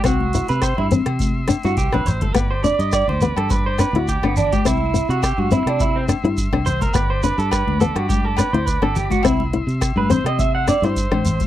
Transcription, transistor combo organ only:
X:1
M:4/4
L:1/8
Q:"Swing 16ths" 1/4=104
K:Clyd
V:1 name="Transistor combo organ"
[ec']8 | [db]8 | [ec']8 | [db]8 |
[ec']8 |]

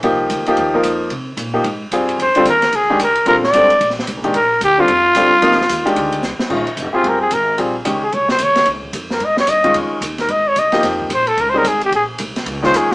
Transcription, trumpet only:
X:1
M:4/4
L:1/8
Q:"Swing" 1/4=222
K:Fdor
V:1 name="Trumpet"
z8 | z8 | c2 B2 A2 B2 | B d4 z3 |
B2 G F4- F- | F6 z2 | [K:Bbdor] z3 F B A B2 | z3 A d c d2 |
z3 B e d e2 | z3 B e d e2 | z2 c =A (3B c B _A G | A z4 c A z |]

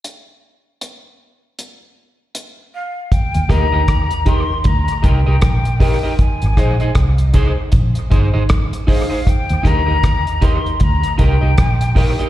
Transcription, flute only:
X:1
M:4/4
L:1/8
Q:"Swing 16ths" 1/4=78
K:Eb
V:1 name="Flute"
z6 z f | g b2 c' b g3 | a3 z4 f | g b2 c' b g3 |]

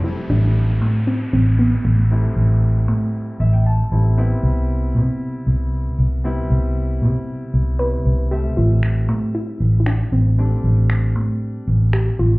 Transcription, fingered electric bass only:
X:1
M:4/4
L:1/8
Q:1/4=116
K:Am
V:1 name="Fingered electric bass" clef=bass
z A,,,2 A,,2 A,,,2 A,,,- | A,,, A,,,2 A,,2 A,,,2 A,,,- | A,,, C,,2 C,2 C,,2 C,,- | C,, C,,2 C,2 C,,2 C,,- |
C,, A,,,2 A,,2 A,,,2 A,,,- | A,,, A,,,2 A,,2 A,,,2 A,,, |]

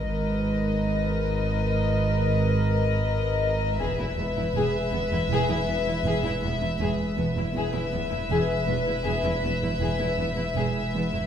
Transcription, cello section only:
X:1
M:5/4
L:1/16
Q:1/4=80
K:Em
V:1 name="Cello section" clef=bass
^G,,16- G,,4 | E,, E,, E,, E,, E,, z E,, E,, E,, E,, E,, E,, E,, E,, E,, E,, E,, z E,, E,, | E,, E,, E,, E,, E,, z E,, E,, E,, E,, E,, E,, E,, E,, E,, E,, E,, z E,, E,, |]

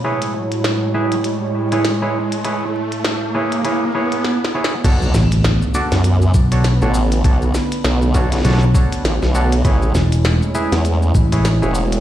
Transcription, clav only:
X:1
M:4/4
L:1/16
Q:"Swing 16ths" 1/4=100
K:Bdor
V:1 name="Clav"
[EGBc]2 z4 [EGBe] z4 [EGBc] z [EGBc] z2 | [EGBc] z4 z [EGBc]2 [EGBc] z [EGBc]2 z2 [EGBc] z | [DFAc]2 z4 [DFAd] z4 [DFAc] z [DFAc] z2 | [DFAc] z4 z [DFAc]2 [DFAc] z [DFAc]2 z2 [DFAc] z |
[EGBc]2 z4 [EGBe] z4 [EGBc] z [EGBc] z2 |]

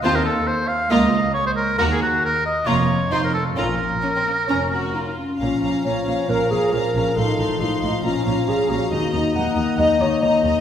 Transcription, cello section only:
X:1
M:4/4
L:1/8
Q:1/4=136
K:Bbm
V:1 name="Cello section" clef=bass
E,,2 z2 D,,2 z2 | E,,2 z2 F,,2 F,,2 | B,,2 z2 F,,2 z2 | B,, B,, B,, B,, B,, B,, B,, B,, |
=A,, A,, A,, A,, B,, B,, B,, B,, | E,, E,, E,, E,, E,, E,, E,, E,, |]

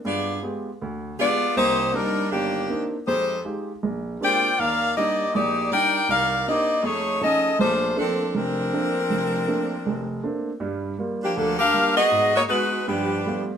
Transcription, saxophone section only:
X:1
M:4/4
L:1/8
Q:"Swing" 1/4=159
K:Bb
V:1 name="Saxophone section"
[=B,F_Ad]2 z4 [B,FAd]2 | [B,EGc]2 [G,DEB]2 [E,B,DG]3 z | [_A,EGc]2 z4 [Fcdg]2 | [EBdf]2 [B,Gde]2 [B,EGd]2 [EBdg]2 |
[EBdf]2 [B,Gde]2 [A,E^G^c]2 [^CGAe]2 | [A,DFc]2 [F,CDA]2 [F,CDB]4- | [F,CDB]6 z2 | z3 [F,B,DG] [F,B,DA] [DGBf]2 [_C_G_Ae]- |
[_C_G_Ae] [B,EG_d] [_A,EG_c]2 [F,=B,=D=G]3 z |]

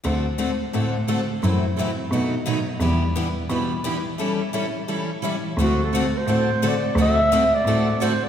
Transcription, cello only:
X:1
M:4/4
L:1/8
Q:"Swing" 1/4=174
K:Dmix
V:1 name="Cello" clef=bass
D,,4 A,,4 | F,,4 B,,4 | E,,4 B,,4 | z8 |
D,,4 A,,4 | D,,4 A,,4 |]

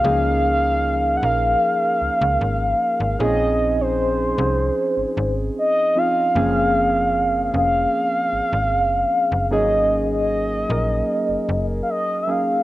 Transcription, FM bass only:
X:1
M:4/4
L:1/16
Q:1/4=76
K:Db
V:1 name="FM bass" clef=bass
D,,6 B,,,2 z2 D,, D,, A,,,2 z A,,, | B,,,6 C,,2 z A,,, A,,,2 z4 | G,,,6 F,,,2 z2 A,,, A,,, G,,,2 z G,,, | A,,,6 B,,,2 z G,,, G,,,2 z4 |]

